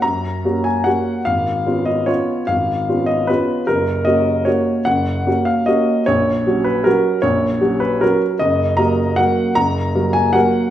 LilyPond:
\new Staff \with { instrumentName = "Grand piano" } { \time 3/4 \key fis \major \tempo 4 = 152 << { ais''4. gis''8 fis''4 | eis''4. dis''8 cis''4 | eis''4. dis''8 b'4 | ais'4 dis''4 cis''4 |
fis''4. eis''8 dis''4 | cis''4. b'8 ais'4 | cis''4. b'8 ais'8 r8 | \key ees \minor ees''4 bes''4 ges''4 |
bes''4. aes''8 ges''4 | } \\ { fis,4 <ais cis' fis'>4 <ais cis' fis'>4 | gis,,4 <b cis' eis'>4 <b cis' eis'>4 | gis,,4 <b cis' eis'>4 <b cis' eis'>4 | fis,,4 <ais cis' fis'>4 <ais cis' fis'>4 |
fis,,4 <ais cis' fis'>4 <ais cis' fis'>4 | ais,,4 <fis cis' fis'>4 <fis cis' fis'>4 | ais,,4 <fis cis' fis'>4 <fis cis' fis'>4 | ges,,4 <ges bes bes'>4 <ges bes bes'>4 |
ges,,4 <ges bes bes'>4 <ges bes bes'>4 | } >> }